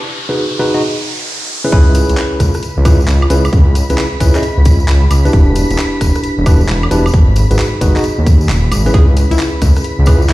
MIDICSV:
0, 0, Header, 1, 7, 480
1, 0, Start_track
1, 0, Key_signature, 4, "minor"
1, 0, Tempo, 451128
1, 1833, Time_signature, 4, 2, 24, 8
1, 10992, End_track
2, 0, Start_track
2, 0, Title_t, "String machine"
2, 0, Program_c, 0, 50
2, 1833, Note_on_c, 0, 83, 90
2, 9499, Note_off_c, 0, 83, 0
2, 9512, Note_on_c, 0, 83, 88
2, 10992, Note_off_c, 0, 83, 0
2, 10992, End_track
3, 0, Start_track
3, 0, Title_t, "Tine electric piano"
3, 0, Program_c, 1, 4
3, 309, Note_on_c, 1, 63, 76
3, 309, Note_on_c, 1, 66, 71
3, 309, Note_on_c, 1, 68, 71
3, 309, Note_on_c, 1, 71, 83
3, 467, Note_off_c, 1, 63, 0
3, 467, Note_off_c, 1, 66, 0
3, 467, Note_off_c, 1, 68, 0
3, 467, Note_off_c, 1, 71, 0
3, 632, Note_on_c, 1, 71, 103
3, 633, Note_on_c, 1, 63, 98
3, 633, Note_on_c, 1, 66, 85
3, 633, Note_on_c, 1, 68, 88
3, 766, Note_off_c, 1, 63, 0
3, 766, Note_off_c, 1, 66, 0
3, 766, Note_off_c, 1, 68, 0
3, 766, Note_off_c, 1, 71, 0
3, 789, Note_on_c, 1, 63, 81
3, 789, Note_on_c, 1, 66, 74
3, 789, Note_on_c, 1, 68, 75
3, 790, Note_on_c, 1, 75, 92
3, 867, Note_off_c, 1, 63, 0
3, 867, Note_off_c, 1, 66, 0
3, 867, Note_off_c, 1, 68, 0
3, 867, Note_off_c, 1, 75, 0
3, 1750, Note_on_c, 1, 61, 89
3, 1750, Note_on_c, 1, 64, 83
3, 1750, Note_on_c, 1, 68, 83
3, 1750, Note_on_c, 1, 71, 95
3, 1821, Note_off_c, 1, 61, 0
3, 1821, Note_off_c, 1, 64, 0
3, 1821, Note_off_c, 1, 68, 0
3, 1821, Note_off_c, 1, 71, 0
3, 1833, Note_on_c, 1, 68, 91
3, 1833, Note_on_c, 1, 71, 112
3, 1834, Note_on_c, 1, 61, 99
3, 1834, Note_on_c, 1, 64, 92
3, 2553, Note_off_c, 1, 61, 0
3, 2553, Note_off_c, 1, 68, 0
3, 2553, Note_off_c, 1, 71, 0
3, 2554, Note_off_c, 1, 64, 0
3, 3033, Note_on_c, 1, 61, 91
3, 3033, Note_on_c, 1, 68, 84
3, 3034, Note_on_c, 1, 64, 82
3, 3034, Note_on_c, 1, 71, 100
3, 3177, Note_off_c, 1, 61, 0
3, 3177, Note_off_c, 1, 64, 0
3, 3177, Note_off_c, 1, 68, 0
3, 3177, Note_off_c, 1, 71, 0
3, 3513, Note_on_c, 1, 61, 93
3, 3513, Note_on_c, 1, 64, 86
3, 3513, Note_on_c, 1, 68, 84
3, 3513, Note_on_c, 1, 71, 104
3, 3657, Note_off_c, 1, 61, 0
3, 3657, Note_off_c, 1, 64, 0
3, 3657, Note_off_c, 1, 68, 0
3, 3657, Note_off_c, 1, 71, 0
3, 4150, Note_on_c, 1, 61, 76
3, 4150, Note_on_c, 1, 64, 70
3, 4150, Note_on_c, 1, 68, 70
3, 4150, Note_on_c, 1, 71, 83
3, 4308, Note_off_c, 1, 61, 0
3, 4308, Note_off_c, 1, 64, 0
3, 4308, Note_off_c, 1, 68, 0
3, 4308, Note_off_c, 1, 71, 0
3, 4473, Note_on_c, 1, 61, 94
3, 4473, Note_on_c, 1, 64, 85
3, 4473, Note_on_c, 1, 68, 86
3, 4473, Note_on_c, 1, 71, 103
3, 4606, Note_off_c, 1, 61, 0
3, 4606, Note_off_c, 1, 64, 0
3, 4606, Note_off_c, 1, 68, 0
3, 4606, Note_off_c, 1, 71, 0
3, 4629, Note_on_c, 1, 61, 78
3, 4629, Note_on_c, 1, 64, 74
3, 4629, Note_on_c, 1, 68, 73
3, 4629, Note_on_c, 1, 75, 88
3, 4707, Note_off_c, 1, 61, 0
3, 4707, Note_off_c, 1, 64, 0
3, 4707, Note_off_c, 1, 68, 0
3, 4707, Note_off_c, 1, 75, 0
3, 5588, Note_on_c, 1, 64, 82
3, 5589, Note_on_c, 1, 62, 88
3, 5589, Note_on_c, 1, 67, 79
3, 5589, Note_on_c, 1, 71, 96
3, 6853, Note_off_c, 1, 62, 0
3, 6853, Note_off_c, 1, 64, 0
3, 6853, Note_off_c, 1, 67, 0
3, 6853, Note_off_c, 1, 71, 0
3, 6873, Note_on_c, 1, 62, 88
3, 6873, Note_on_c, 1, 64, 80
3, 6873, Note_on_c, 1, 67, 82
3, 6873, Note_on_c, 1, 71, 100
3, 7017, Note_off_c, 1, 62, 0
3, 7017, Note_off_c, 1, 64, 0
3, 7017, Note_off_c, 1, 67, 0
3, 7017, Note_off_c, 1, 71, 0
3, 7353, Note_on_c, 1, 62, 95
3, 7353, Note_on_c, 1, 64, 89
3, 7353, Note_on_c, 1, 67, 87
3, 7353, Note_on_c, 1, 71, 102
3, 7497, Note_off_c, 1, 62, 0
3, 7497, Note_off_c, 1, 64, 0
3, 7497, Note_off_c, 1, 67, 0
3, 7497, Note_off_c, 1, 71, 0
3, 7988, Note_on_c, 1, 66, 69
3, 7988, Note_on_c, 1, 68, 71
3, 7988, Note_on_c, 1, 71, 84
3, 7989, Note_on_c, 1, 63, 75
3, 8147, Note_off_c, 1, 63, 0
3, 8147, Note_off_c, 1, 66, 0
3, 8147, Note_off_c, 1, 68, 0
3, 8147, Note_off_c, 1, 71, 0
3, 8311, Note_on_c, 1, 66, 87
3, 8311, Note_on_c, 1, 68, 86
3, 8312, Note_on_c, 1, 63, 95
3, 8312, Note_on_c, 1, 71, 102
3, 8445, Note_off_c, 1, 63, 0
3, 8445, Note_off_c, 1, 66, 0
3, 8445, Note_off_c, 1, 68, 0
3, 8445, Note_off_c, 1, 71, 0
3, 8468, Note_on_c, 1, 63, 79
3, 8468, Note_on_c, 1, 66, 75
3, 8468, Note_on_c, 1, 68, 75
3, 8468, Note_on_c, 1, 75, 89
3, 8546, Note_off_c, 1, 63, 0
3, 8546, Note_off_c, 1, 66, 0
3, 8546, Note_off_c, 1, 68, 0
3, 8546, Note_off_c, 1, 75, 0
3, 9428, Note_on_c, 1, 61, 87
3, 9428, Note_on_c, 1, 64, 79
3, 9428, Note_on_c, 1, 68, 78
3, 9428, Note_on_c, 1, 71, 94
3, 10692, Note_off_c, 1, 61, 0
3, 10692, Note_off_c, 1, 68, 0
3, 10693, Note_off_c, 1, 64, 0
3, 10693, Note_off_c, 1, 71, 0
3, 10712, Note_on_c, 1, 61, 90
3, 10712, Note_on_c, 1, 64, 82
3, 10712, Note_on_c, 1, 68, 82
3, 10712, Note_on_c, 1, 71, 102
3, 10857, Note_off_c, 1, 61, 0
3, 10857, Note_off_c, 1, 64, 0
3, 10857, Note_off_c, 1, 68, 0
3, 10857, Note_off_c, 1, 71, 0
3, 10992, End_track
4, 0, Start_track
4, 0, Title_t, "Synth pluck"
4, 0, Program_c, 2, 84
4, 9512, Note_on_c, 2, 68, 100
4, 9701, Note_off_c, 2, 68, 0
4, 9907, Note_on_c, 2, 64, 95
4, 10051, Note_off_c, 2, 64, 0
4, 10951, Note_on_c, 2, 64, 95
4, 10992, Note_off_c, 2, 64, 0
4, 10992, End_track
5, 0, Start_track
5, 0, Title_t, "Detuned saw bass"
5, 0, Program_c, 3, 39
5, 1834, Note_on_c, 3, 37, 100
5, 2162, Note_off_c, 3, 37, 0
5, 2230, Note_on_c, 3, 37, 99
5, 2291, Note_off_c, 3, 37, 0
5, 2554, Note_on_c, 3, 37, 81
5, 2668, Note_off_c, 3, 37, 0
5, 2949, Note_on_c, 3, 37, 102
5, 3237, Note_off_c, 3, 37, 0
5, 3273, Note_on_c, 3, 37, 92
5, 3468, Note_off_c, 3, 37, 0
5, 3514, Note_on_c, 3, 37, 99
5, 3708, Note_off_c, 3, 37, 0
5, 3752, Note_on_c, 3, 37, 100
5, 4082, Note_off_c, 3, 37, 0
5, 4150, Note_on_c, 3, 37, 100
5, 4211, Note_off_c, 3, 37, 0
5, 4473, Note_on_c, 3, 37, 83
5, 4587, Note_off_c, 3, 37, 0
5, 4868, Note_on_c, 3, 37, 99
5, 5157, Note_off_c, 3, 37, 0
5, 5193, Note_on_c, 3, 37, 90
5, 5388, Note_off_c, 3, 37, 0
5, 5433, Note_on_c, 3, 37, 98
5, 5628, Note_off_c, 3, 37, 0
5, 5673, Note_on_c, 3, 28, 100
5, 6002, Note_off_c, 3, 28, 0
5, 6069, Note_on_c, 3, 28, 100
5, 6131, Note_off_c, 3, 28, 0
5, 6393, Note_on_c, 3, 28, 82
5, 6507, Note_off_c, 3, 28, 0
5, 6788, Note_on_c, 3, 28, 101
5, 7077, Note_off_c, 3, 28, 0
5, 7113, Note_on_c, 3, 28, 91
5, 7308, Note_off_c, 3, 28, 0
5, 7353, Note_on_c, 3, 28, 101
5, 7548, Note_off_c, 3, 28, 0
5, 7593, Note_on_c, 3, 32, 97
5, 7922, Note_off_c, 3, 32, 0
5, 7989, Note_on_c, 3, 32, 101
5, 8051, Note_off_c, 3, 32, 0
5, 8313, Note_on_c, 3, 32, 84
5, 8427, Note_off_c, 3, 32, 0
5, 8708, Note_on_c, 3, 39, 83
5, 9031, Note_on_c, 3, 27, 103
5, 9047, Note_off_c, 3, 39, 0
5, 9227, Note_off_c, 3, 27, 0
5, 9272, Note_on_c, 3, 32, 80
5, 9467, Note_off_c, 3, 32, 0
5, 9512, Note_on_c, 3, 37, 101
5, 9842, Note_off_c, 3, 37, 0
5, 9908, Note_on_c, 3, 37, 98
5, 9970, Note_off_c, 3, 37, 0
5, 10232, Note_on_c, 3, 37, 84
5, 10347, Note_off_c, 3, 37, 0
5, 10628, Note_on_c, 3, 37, 101
5, 10916, Note_off_c, 3, 37, 0
5, 10952, Note_on_c, 3, 37, 90
5, 10992, Note_off_c, 3, 37, 0
5, 10992, End_track
6, 0, Start_track
6, 0, Title_t, "Riser"
6, 0, Program_c, 4, 103
6, 0, Note_on_c, 4, 60, 78
6, 1833, Note_off_c, 4, 60, 0
6, 10992, End_track
7, 0, Start_track
7, 0, Title_t, "Drums"
7, 1827, Note_on_c, 9, 54, 36
7, 1833, Note_on_c, 9, 42, 67
7, 1834, Note_on_c, 9, 36, 119
7, 1934, Note_off_c, 9, 54, 0
7, 1939, Note_off_c, 9, 42, 0
7, 1940, Note_off_c, 9, 36, 0
7, 2072, Note_on_c, 9, 54, 90
7, 2073, Note_on_c, 9, 37, 33
7, 2073, Note_on_c, 9, 46, 109
7, 2178, Note_off_c, 9, 54, 0
7, 2179, Note_off_c, 9, 37, 0
7, 2179, Note_off_c, 9, 46, 0
7, 2226, Note_on_c, 9, 54, 49
7, 2229, Note_on_c, 9, 42, 67
7, 2313, Note_off_c, 9, 42, 0
7, 2313, Note_on_c, 9, 39, 120
7, 2313, Note_on_c, 9, 42, 66
7, 2315, Note_off_c, 9, 54, 0
7, 2315, Note_on_c, 9, 54, 39
7, 2420, Note_off_c, 9, 39, 0
7, 2420, Note_off_c, 9, 42, 0
7, 2421, Note_off_c, 9, 54, 0
7, 2553, Note_on_c, 9, 36, 62
7, 2554, Note_on_c, 9, 37, 75
7, 2554, Note_on_c, 9, 46, 116
7, 2555, Note_on_c, 9, 54, 82
7, 2660, Note_off_c, 9, 36, 0
7, 2660, Note_off_c, 9, 37, 0
7, 2660, Note_off_c, 9, 46, 0
7, 2661, Note_off_c, 9, 54, 0
7, 2703, Note_on_c, 9, 54, 58
7, 2710, Note_on_c, 9, 37, 61
7, 2710, Note_on_c, 9, 42, 37
7, 2793, Note_off_c, 9, 42, 0
7, 2793, Note_on_c, 9, 42, 66
7, 2798, Note_off_c, 9, 54, 0
7, 2798, Note_on_c, 9, 54, 38
7, 2817, Note_off_c, 9, 37, 0
7, 2900, Note_off_c, 9, 42, 0
7, 2905, Note_off_c, 9, 54, 0
7, 3033, Note_on_c, 9, 36, 108
7, 3034, Note_on_c, 9, 46, 109
7, 3034, Note_on_c, 9, 54, 92
7, 3034, Note_on_c, 9, 76, 74
7, 3140, Note_off_c, 9, 36, 0
7, 3140, Note_off_c, 9, 46, 0
7, 3140, Note_off_c, 9, 54, 0
7, 3140, Note_off_c, 9, 76, 0
7, 3196, Note_on_c, 9, 54, 52
7, 3273, Note_on_c, 9, 39, 117
7, 3273, Note_on_c, 9, 42, 64
7, 3279, Note_off_c, 9, 54, 0
7, 3279, Note_on_c, 9, 54, 42
7, 3380, Note_off_c, 9, 39, 0
7, 3380, Note_off_c, 9, 42, 0
7, 3385, Note_off_c, 9, 54, 0
7, 3428, Note_on_c, 9, 76, 78
7, 3512, Note_on_c, 9, 46, 108
7, 3517, Note_on_c, 9, 54, 92
7, 3535, Note_off_c, 9, 76, 0
7, 3618, Note_off_c, 9, 46, 0
7, 3624, Note_off_c, 9, 54, 0
7, 3670, Note_on_c, 9, 42, 37
7, 3670, Note_on_c, 9, 54, 55
7, 3670, Note_on_c, 9, 76, 78
7, 3752, Note_off_c, 9, 42, 0
7, 3752, Note_on_c, 9, 42, 66
7, 3753, Note_on_c, 9, 36, 125
7, 3761, Note_off_c, 9, 54, 0
7, 3761, Note_on_c, 9, 54, 45
7, 3776, Note_off_c, 9, 76, 0
7, 3859, Note_off_c, 9, 36, 0
7, 3859, Note_off_c, 9, 42, 0
7, 3867, Note_off_c, 9, 54, 0
7, 3993, Note_on_c, 9, 37, 32
7, 3993, Note_on_c, 9, 46, 104
7, 3999, Note_on_c, 9, 54, 101
7, 4100, Note_off_c, 9, 37, 0
7, 4100, Note_off_c, 9, 46, 0
7, 4105, Note_off_c, 9, 54, 0
7, 4149, Note_on_c, 9, 42, 66
7, 4150, Note_on_c, 9, 54, 56
7, 4228, Note_off_c, 9, 54, 0
7, 4228, Note_on_c, 9, 54, 37
7, 4233, Note_off_c, 9, 42, 0
7, 4233, Note_on_c, 9, 39, 127
7, 4233, Note_on_c, 9, 42, 65
7, 4334, Note_off_c, 9, 54, 0
7, 4340, Note_off_c, 9, 39, 0
7, 4340, Note_off_c, 9, 42, 0
7, 4473, Note_on_c, 9, 36, 65
7, 4473, Note_on_c, 9, 46, 109
7, 4478, Note_on_c, 9, 54, 100
7, 4579, Note_off_c, 9, 36, 0
7, 4580, Note_off_c, 9, 46, 0
7, 4585, Note_off_c, 9, 54, 0
7, 4630, Note_on_c, 9, 37, 58
7, 4630, Note_on_c, 9, 39, 65
7, 4630, Note_on_c, 9, 42, 35
7, 4631, Note_on_c, 9, 54, 57
7, 4708, Note_off_c, 9, 54, 0
7, 4708, Note_on_c, 9, 54, 44
7, 4713, Note_off_c, 9, 42, 0
7, 4713, Note_on_c, 9, 42, 65
7, 4736, Note_off_c, 9, 37, 0
7, 4736, Note_off_c, 9, 39, 0
7, 4815, Note_off_c, 9, 54, 0
7, 4820, Note_off_c, 9, 42, 0
7, 4950, Note_on_c, 9, 54, 102
7, 4953, Note_on_c, 9, 36, 109
7, 4953, Note_on_c, 9, 46, 106
7, 5056, Note_off_c, 9, 54, 0
7, 5059, Note_off_c, 9, 36, 0
7, 5059, Note_off_c, 9, 46, 0
7, 5106, Note_on_c, 9, 54, 55
7, 5193, Note_on_c, 9, 39, 126
7, 5193, Note_on_c, 9, 42, 64
7, 5195, Note_off_c, 9, 54, 0
7, 5195, Note_on_c, 9, 54, 39
7, 5300, Note_off_c, 9, 39, 0
7, 5300, Note_off_c, 9, 42, 0
7, 5301, Note_off_c, 9, 54, 0
7, 5433, Note_on_c, 9, 46, 103
7, 5433, Note_on_c, 9, 54, 100
7, 5433, Note_on_c, 9, 76, 76
7, 5539, Note_off_c, 9, 54, 0
7, 5540, Note_off_c, 9, 46, 0
7, 5540, Note_off_c, 9, 76, 0
7, 5590, Note_on_c, 9, 42, 36
7, 5592, Note_on_c, 9, 54, 56
7, 5673, Note_on_c, 9, 36, 127
7, 5674, Note_off_c, 9, 42, 0
7, 5674, Note_on_c, 9, 42, 64
7, 5680, Note_off_c, 9, 54, 0
7, 5680, Note_on_c, 9, 54, 42
7, 5780, Note_off_c, 9, 36, 0
7, 5780, Note_off_c, 9, 42, 0
7, 5786, Note_off_c, 9, 54, 0
7, 5910, Note_on_c, 9, 54, 92
7, 5913, Note_on_c, 9, 37, 32
7, 5913, Note_on_c, 9, 46, 103
7, 6016, Note_off_c, 9, 54, 0
7, 6020, Note_off_c, 9, 37, 0
7, 6020, Note_off_c, 9, 46, 0
7, 6070, Note_on_c, 9, 42, 64
7, 6070, Note_on_c, 9, 54, 59
7, 6154, Note_off_c, 9, 42, 0
7, 6154, Note_on_c, 9, 39, 127
7, 6154, Note_on_c, 9, 42, 66
7, 6156, Note_off_c, 9, 54, 0
7, 6156, Note_on_c, 9, 54, 44
7, 6260, Note_off_c, 9, 39, 0
7, 6260, Note_off_c, 9, 42, 0
7, 6262, Note_off_c, 9, 54, 0
7, 6393, Note_on_c, 9, 36, 64
7, 6394, Note_on_c, 9, 37, 71
7, 6394, Note_on_c, 9, 46, 104
7, 6398, Note_on_c, 9, 54, 96
7, 6500, Note_off_c, 9, 36, 0
7, 6500, Note_off_c, 9, 37, 0
7, 6500, Note_off_c, 9, 46, 0
7, 6504, Note_off_c, 9, 54, 0
7, 6548, Note_on_c, 9, 54, 53
7, 6550, Note_on_c, 9, 37, 57
7, 6550, Note_on_c, 9, 42, 35
7, 6634, Note_off_c, 9, 42, 0
7, 6634, Note_on_c, 9, 42, 63
7, 6635, Note_off_c, 9, 54, 0
7, 6635, Note_on_c, 9, 54, 37
7, 6656, Note_off_c, 9, 37, 0
7, 6740, Note_off_c, 9, 42, 0
7, 6741, Note_off_c, 9, 54, 0
7, 6873, Note_on_c, 9, 36, 116
7, 6874, Note_on_c, 9, 46, 101
7, 6874, Note_on_c, 9, 76, 75
7, 6877, Note_on_c, 9, 54, 98
7, 6980, Note_off_c, 9, 36, 0
7, 6980, Note_off_c, 9, 46, 0
7, 6980, Note_off_c, 9, 76, 0
7, 6984, Note_off_c, 9, 54, 0
7, 7031, Note_on_c, 9, 54, 58
7, 7109, Note_off_c, 9, 54, 0
7, 7109, Note_on_c, 9, 54, 41
7, 7113, Note_on_c, 9, 39, 127
7, 7113, Note_on_c, 9, 42, 61
7, 7215, Note_off_c, 9, 54, 0
7, 7219, Note_off_c, 9, 39, 0
7, 7219, Note_off_c, 9, 42, 0
7, 7270, Note_on_c, 9, 76, 79
7, 7353, Note_on_c, 9, 46, 100
7, 7353, Note_on_c, 9, 54, 91
7, 7376, Note_off_c, 9, 76, 0
7, 7460, Note_off_c, 9, 46, 0
7, 7460, Note_off_c, 9, 54, 0
7, 7510, Note_on_c, 9, 42, 36
7, 7510, Note_on_c, 9, 76, 79
7, 7524, Note_on_c, 9, 54, 57
7, 7593, Note_off_c, 9, 42, 0
7, 7593, Note_on_c, 9, 36, 124
7, 7593, Note_on_c, 9, 42, 65
7, 7598, Note_off_c, 9, 54, 0
7, 7598, Note_on_c, 9, 54, 42
7, 7616, Note_off_c, 9, 76, 0
7, 7700, Note_off_c, 9, 36, 0
7, 7700, Note_off_c, 9, 42, 0
7, 7705, Note_off_c, 9, 54, 0
7, 7828, Note_on_c, 9, 54, 90
7, 7834, Note_on_c, 9, 37, 31
7, 7834, Note_on_c, 9, 46, 97
7, 7935, Note_off_c, 9, 54, 0
7, 7940, Note_off_c, 9, 37, 0
7, 7940, Note_off_c, 9, 46, 0
7, 7989, Note_on_c, 9, 42, 65
7, 7991, Note_on_c, 9, 54, 54
7, 8073, Note_off_c, 9, 42, 0
7, 8073, Note_on_c, 9, 39, 125
7, 8073, Note_on_c, 9, 42, 66
7, 8074, Note_off_c, 9, 54, 0
7, 8074, Note_on_c, 9, 54, 39
7, 8179, Note_off_c, 9, 39, 0
7, 8179, Note_off_c, 9, 42, 0
7, 8180, Note_off_c, 9, 54, 0
7, 8313, Note_on_c, 9, 36, 64
7, 8313, Note_on_c, 9, 46, 108
7, 8313, Note_on_c, 9, 54, 100
7, 8419, Note_off_c, 9, 36, 0
7, 8420, Note_off_c, 9, 46, 0
7, 8420, Note_off_c, 9, 54, 0
7, 8470, Note_on_c, 9, 37, 58
7, 8470, Note_on_c, 9, 39, 64
7, 8470, Note_on_c, 9, 42, 37
7, 8471, Note_on_c, 9, 54, 51
7, 8552, Note_off_c, 9, 54, 0
7, 8552, Note_on_c, 9, 54, 44
7, 8553, Note_off_c, 9, 42, 0
7, 8553, Note_on_c, 9, 42, 63
7, 8576, Note_off_c, 9, 37, 0
7, 8576, Note_off_c, 9, 39, 0
7, 8658, Note_off_c, 9, 54, 0
7, 8660, Note_off_c, 9, 42, 0
7, 8793, Note_on_c, 9, 36, 112
7, 8794, Note_on_c, 9, 46, 103
7, 8797, Note_on_c, 9, 54, 88
7, 8899, Note_off_c, 9, 36, 0
7, 8900, Note_off_c, 9, 46, 0
7, 8903, Note_off_c, 9, 54, 0
7, 8947, Note_on_c, 9, 54, 58
7, 9033, Note_on_c, 9, 39, 127
7, 9033, Note_on_c, 9, 42, 65
7, 9040, Note_off_c, 9, 54, 0
7, 9040, Note_on_c, 9, 54, 45
7, 9140, Note_off_c, 9, 39, 0
7, 9140, Note_off_c, 9, 42, 0
7, 9146, Note_off_c, 9, 54, 0
7, 9273, Note_on_c, 9, 46, 100
7, 9273, Note_on_c, 9, 76, 80
7, 9276, Note_on_c, 9, 54, 105
7, 9379, Note_off_c, 9, 46, 0
7, 9379, Note_off_c, 9, 76, 0
7, 9382, Note_off_c, 9, 54, 0
7, 9430, Note_on_c, 9, 42, 37
7, 9438, Note_on_c, 9, 54, 53
7, 9512, Note_on_c, 9, 36, 125
7, 9513, Note_off_c, 9, 54, 0
7, 9513, Note_on_c, 9, 54, 42
7, 9514, Note_off_c, 9, 42, 0
7, 9514, Note_on_c, 9, 42, 69
7, 9619, Note_off_c, 9, 36, 0
7, 9620, Note_off_c, 9, 54, 0
7, 9621, Note_off_c, 9, 42, 0
7, 9752, Note_on_c, 9, 54, 87
7, 9754, Note_on_c, 9, 37, 30
7, 9754, Note_on_c, 9, 46, 101
7, 9858, Note_off_c, 9, 54, 0
7, 9861, Note_off_c, 9, 37, 0
7, 9861, Note_off_c, 9, 46, 0
7, 9910, Note_on_c, 9, 42, 66
7, 9911, Note_on_c, 9, 54, 50
7, 9992, Note_off_c, 9, 42, 0
7, 9992, Note_on_c, 9, 39, 123
7, 9992, Note_on_c, 9, 42, 69
7, 9993, Note_off_c, 9, 54, 0
7, 9993, Note_on_c, 9, 54, 43
7, 10099, Note_off_c, 9, 39, 0
7, 10099, Note_off_c, 9, 42, 0
7, 10100, Note_off_c, 9, 54, 0
7, 10231, Note_on_c, 9, 54, 97
7, 10232, Note_on_c, 9, 36, 64
7, 10233, Note_on_c, 9, 37, 65
7, 10233, Note_on_c, 9, 46, 104
7, 10337, Note_off_c, 9, 54, 0
7, 10338, Note_off_c, 9, 36, 0
7, 10339, Note_off_c, 9, 37, 0
7, 10339, Note_off_c, 9, 46, 0
7, 10384, Note_on_c, 9, 54, 55
7, 10390, Note_on_c, 9, 37, 55
7, 10390, Note_on_c, 9, 42, 37
7, 10473, Note_off_c, 9, 42, 0
7, 10473, Note_on_c, 9, 42, 69
7, 10475, Note_off_c, 9, 54, 0
7, 10475, Note_on_c, 9, 54, 38
7, 10496, Note_off_c, 9, 37, 0
7, 10579, Note_off_c, 9, 42, 0
7, 10582, Note_off_c, 9, 54, 0
7, 10701, Note_on_c, 9, 54, 100
7, 10712, Note_on_c, 9, 36, 109
7, 10713, Note_on_c, 9, 46, 101
7, 10713, Note_on_c, 9, 76, 83
7, 10808, Note_off_c, 9, 54, 0
7, 10818, Note_off_c, 9, 36, 0
7, 10819, Note_off_c, 9, 46, 0
7, 10819, Note_off_c, 9, 76, 0
7, 10874, Note_on_c, 9, 54, 53
7, 10953, Note_on_c, 9, 39, 116
7, 10953, Note_on_c, 9, 42, 67
7, 10956, Note_off_c, 9, 54, 0
7, 10956, Note_on_c, 9, 54, 43
7, 10992, Note_off_c, 9, 39, 0
7, 10992, Note_off_c, 9, 42, 0
7, 10992, Note_off_c, 9, 54, 0
7, 10992, End_track
0, 0, End_of_file